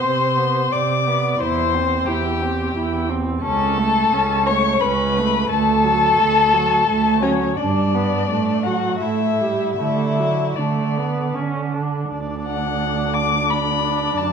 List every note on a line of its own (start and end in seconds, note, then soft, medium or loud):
0.00 0.64 C3 soft
0.00 0.38 C4 soft
0.00 0.73 C5 medium
0.00 0.74 C6 medium
0.36 0.70 B3 soft
0.70 1.33 C3 medium
0.70 1.08 C4 soft
0.70 1.42 D5 medium
0.70 1.41 D6 medium
1.07 1.40 B3 soft
1.40 2.00 E2 medium
1.40 1.76 E4 soft
1.40 2.08 C5 medium
1.40 2.07 C6 medium
1.75 2.10 C4 soft
2.06 2.68 E2 medium
2.06 2.44 E4 soft
2.06 3.09 G4 medium
2.06 3.07 G5 medium
2.42 2.76 C4 soft
2.75 3.35 E2 medium
2.75 3.11 E4 soft
3.10 3.43 C4 soft
3.43 4.04 C#2 medium
3.43 3.79 C#4 medium
3.43 4.48 A4 medium
3.43 4.48 A5 medium
3.78 4.15 A3 medium
4.11 4.72 C#2 medium
4.11 4.50 C#4 medium
4.46 4.81 A3 medium
4.46 4.82 C#5 medium
4.46 4.82 C#6 medium
4.80 5.42 C#2 medium
4.80 5.20 C#4 medium
4.80 5.51 B4 medium
4.80 5.49 B5 medium
5.19 5.51 A3 soft
5.49 6.10 D2 medium
5.49 5.87 A3 medium
5.49 7.21 A4 medium
5.49 7.24 A5 medium
5.85 6.21 F#3 medium
6.19 6.80 D2 medium
6.19 6.55 A3 soft
6.53 6.88 F#3 medium
6.88 7.50 D2 medium
6.88 7.24 A3 medium
7.21 7.58 F#3 soft
7.21 7.56 C#4 medium
7.21 7.59 C#5 medium
7.57 8.21 G2 medium
7.57 8.67 D4 medium
7.57 7.96 D4 medium
7.57 8.65 D5 medium
7.95 8.29 B3 soft
8.30 8.94 A2 medium
8.30 8.68 A3 soft
8.64 9.03 F#3 soft
8.64 9.03 F#4 soft
8.64 8.98 F#5 medium
8.99 9.69 A2 soft
8.99 9.78 E4 medium
8.99 9.74 E5 medium
9.03 9.43 A3 soft
9.41 9.79 G3 soft
9.74 10.48 D3 medium
9.74 10.57 E5 medium
9.80 10.21 A3 soft
9.80 10.60 E4 medium
10.19 10.59 F#3 soft
10.55 11.26 D3 soft
10.55 10.99 A3 soft
10.55 11.36 D4 soft
10.55 11.35 D5 medium
10.98 11.36 B3 medium
11.35 12.04 D3 soft
11.35 11.75 C#4 medium
11.74 12.11 D4 soft
12.12 14.13 D2 medium
12.12 14.32 D4 medium
12.12 14.32 D5 medium
12.47 13.16 F#5 medium
13.14 13.51 D6 medium
13.50 14.19 B5 medium
14.17 14.32 F#2 medium
14.17 14.32 A5 medium